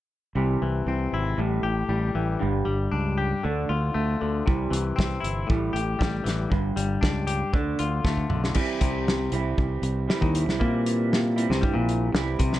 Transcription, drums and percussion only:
4.48 kick
4.73 closed hi-hat
4.99 kick, snare
5.24 closed hi-hat
5.50 kick
5.76 closed hi-hat
6.01 kick, snare
6.26 snare, closed hi-hat
6.52 kick
6.77 closed hi-hat
7.03 kick, snare
7.28 closed hi-hat
7.54 kick
7.79 closed hi-hat
8.05 kick, snare
8.17 kick
8.30 mid tom
8.44 snare
8.54 kick, crash
8.81 kick, closed hi-hat
9.08 snare
9.32 closed hi-hat
9.58 kick
9.83 closed hi-hat
10.10 snare
10.22 kick
10.35 closed hi-hat
10.49 snare
10.61 kick
10.86 closed hi-hat
11.13 snare
11.38 closed hi-hat
11.52 snare
11.63 kick
11.89 closed hi-hat
12.15 snare
12.39 kick, closed hi-hat
12.53 snare

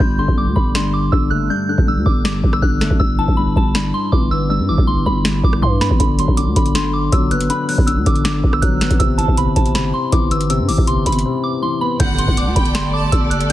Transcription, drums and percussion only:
0.00 kick
0.28 kick
0.56 kick
0.75 snare
1.12 kick
1.78 kick
2.06 kick
2.25 snare
2.44 kick
2.53 cross-stick
2.62 kick
2.81 snare
2.91 kick
3.00 kick
3.28 kick
3.56 kick
3.75 snare
4.12 kick
4.78 kick
5.25 snare
5.44 kick
5.53 cross-stick
5.62 kick
5.81 snare
5.91 kick
6.00 kick, closed hi-hat
6.19 closed hi-hat
6.28 kick
6.37 closed hi-hat
6.56 kick, closed hi-hat
6.66 closed hi-hat
6.75 snare, closed hi-hat
7.12 kick, closed hi-hat
7.31 closed hi-hat
7.41 closed hi-hat
7.50 closed hi-hat
7.69 open hi-hat
7.78 kick
7.88 closed hi-hat
8.06 kick, closed hi-hat
8.16 closed hi-hat
8.25 snare, closed hi-hat
8.44 kick
8.53 cross-stick
8.62 kick, closed hi-hat
8.81 snare, closed hi-hat
8.91 kick, closed hi-hat
9.00 kick, closed hi-hat
9.19 closed hi-hat
9.28 kick
9.37 closed hi-hat
9.56 kick, closed hi-hat
9.66 closed hi-hat
9.75 snare, closed hi-hat
10.12 kick, closed hi-hat
10.31 closed hi-hat
10.41 closed hi-hat
10.50 closed hi-hat
10.69 open hi-hat
10.78 kick
10.87 closed hi-hat
11.06 closed hi-hat
11.12 closed hi-hat
11.19 closed hi-hat
12.00 kick, closed hi-hat
12.19 closed hi-hat
12.28 kick
12.37 closed hi-hat
12.56 kick, closed hi-hat
12.65 closed hi-hat
12.75 snare, closed hi-hat
13.12 kick, closed hi-hat
13.31 closed hi-hat
13.41 closed hi-hat

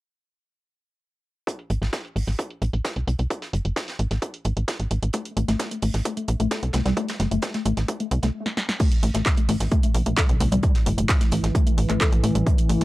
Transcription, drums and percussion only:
1.47 kick, closed hi-hat
1.59 closed hi-hat
1.70 closed hi-hat
1.82 snare, closed hi-hat
1.93 kick, snare, closed hi-hat
2.05 closed hi-hat
2.16 closed hi-hat, open hi-hat
2.27 snare, closed hi-hat
2.39 kick, closed hi-hat
2.50 closed hi-hat
2.62 closed hi-hat
2.73 closed hi-hat
2.84 kick, snare, closed hi-hat
2.96 closed hi-hat
3.08 closed hi-hat
3.19 closed hi-hat
3.30 kick, closed hi-hat
3.42 snare, closed hi-hat
3.53 closed hi-hat
3.65 closed hi-hat
3.76 kick, snare, closed hi-hat
3.88 snare, closed hi-hat
3.99 closed hi-hat
4.11 snare, closed hi-hat
4.22 kick, closed hi-hat
4.34 closed hi-hat
4.45 closed hi-hat
4.57 closed hi-hat
4.68 kick, snare, closed hi-hat
4.80 closed hi-hat
4.91 closed hi-hat
5.03 closed hi-hat
5.13 kick, closed hi-hat
5.25 closed hi-hat
5.37 closed hi-hat
5.48 snare, closed hi-hat
5.59 kick, snare, closed hi-hat
5.71 closed hi-hat
5.82 closed hi-hat, open hi-hat
5.94 snare, closed hi-hat
6.05 kick, closed hi-hat
6.17 closed hi-hat
6.28 closed hi-hat
6.40 closed hi-hat
6.51 kick, snare, closed hi-hat
6.63 closed hi-hat
6.73 snare, closed hi-hat
6.86 snare, closed hi-hat
6.97 kick, closed hi-hat
7.08 snare, closed hi-hat
7.20 snare, closed hi-hat
7.31 closed hi-hat
7.42 kick, snare, closed hi-hat
7.54 snare, closed hi-hat
7.65 closed hi-hat
7.77 snare, closed hi-hat
7.88 kick, closed hi-hat
8.00 closed hi-hat
8.11 closed hi-hat
8.22 snare, closed hi-hat
8.46 snare
8.57 snare
8.69 snare
8.80 kick, closed hi-hat, crash
8.92 closed hi-hat
9.02 closed hi-hat, open hi-hat
9.14 snare, closed hi-hat
9.26 kick, snare, clap, closed hi-hat
9.37 closed hi-hat
9.49 open hi-hat
9.60 snare, closed hi-hat
9.71 kick, closed hi-hat
9.83 closed hi-hat
9.95 closed hi-hat, open hi-hat
10.06 closed hi-hat
10.17 kick, snare, clap, closed hi-hat
10.29 closed hi-hat
10.40 closed hi-hat, open hi-hat
10.51 closed hi-hat
10.63 kick, closed hi-hat
10.75 snare, closed hi-hat
10.86 closed hi-hat, open hi-hat
10.98 closed hi-hat
11.09 kick, snare, clap, closed hi-hat
11.21 snare, closed hi-hat
11.31 closed hi-hat, open hi-hat
11.44 snare, closed hi-hat
11.55 kick, closed hi-hat
11.67 closed hi-hat
11.78 closed hi-hat, open hi-hat
11.90 clap, closed hi-hat
12.01 kick, snare, clap, closed hi-hat
12.12 closed hi-hat
12.24 closed hi-hat, open hi-hat
12.35 closed hi-hat
12.46 kick, closed hi-hat
12.58 closed hi-hat
12.69 closed hi-hat, open hi-hat
12.81 snare, closed hi-hat

